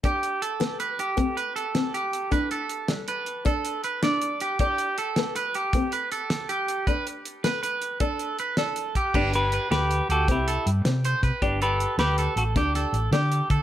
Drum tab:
CC |------------|------------|------------|------------|
HH |xxxxxxxxxxxx|xxxxxxxxxxxx|xxxxxxxxxxxx|xxxxxxxxxxxx|
SD |---o-----o--|---o-----o--|---o-----o--|---o-----o--|
BD |o-----o-----|o-----o-----|o-----o-----|o-----o----o|

CC |x-----------|------------|
HH |-xxxxxxxxxxx|xxxxxxxxxxxx|
SD |---o-----o--|---o---o-o--|
BD |o-----o----o|o-----o----o|